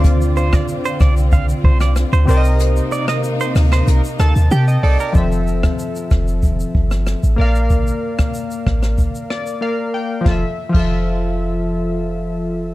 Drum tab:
CC |----------------|----------------|----------------|----------------|
HH |p-------------o-|p-----o-p-----o-|----------------|----------------|
SH |xxxxxxxxxx-xxxxx|xxxxxxxxxxxxxx-x|xxxxxxxxxx-xxx-x|xx-xxx-xxx-x----|
SD |---r--r----rr---|---r--rr--r-----|---r--r----rr---|---r--rr--r-----|
BD |o--o--o-o-o-----|----------------|o--o--o-o-o-----|o--o--o-o-------|

CC |---x------------|
HH |----------------|
SH |----------------|
SD |o---------------|
BD |o--o------------|